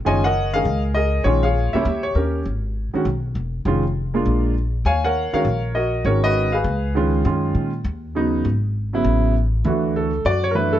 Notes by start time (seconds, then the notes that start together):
0.05 F#1 D#3 G#3 C#4 F4 C#5 D#5 G#5
0.24 A#4 D#5 F#5
0.53 D#3 G#3 C#4 G#4 A#4 F5
0.65 C#2
0.94 G#4 A#4 D#5
1.24 A#1 D#3 G#3 C#4 F4 G#4 C#5
1.43 G#4 C#5 F5
1.73 C#2 G3 A#3 C#4 E4 G4 C#5 E5
1.85 D#2
2.03 C#5
2.15 D#2 C#4 G4 A#4
2.45 G#1
2.94 D#3 G#3 C#4 F#4, muted upright bass stroke
3.05 B1
3.35 E1
3.65 F1 D#3 G#3 C#4 F4
4.14 G#3 A#3 D4 F4
4.25 A#1
4.85 D#2 C#5 F5 G#5
5.04 A#4 C#5 F#5
5.33 D#3 G#3 C#4 F#4 A#4 C#5 F5, muted upright bass stroke
5.45 A#1
5.75 F#4 A#4 D#5
6.04 G#1 D#3 G#3 C#4 F#4 A#4 C#5
6.24 F#4 B4 D#5
6.52 G#4 B4 F5
6.64 C#2
6.95 D#3 G#3 C#4 F4
7.24 F#2 D#3 G#3 C#4 F4
7.55 A#2
7.84 D#2
8.15 C#3 F#3 B3 D#4
8.45 G#1
8.93 C#3 F#3 B3 E4
9.04 A1
9.64 D2 E3 A3 D4 F#4
9.96 A4
10.25 F#2 F#4 D5
10.44 C#5
10.51 E3 A#4
10.55 A3 D4 E4 B4
10.73 E4 A4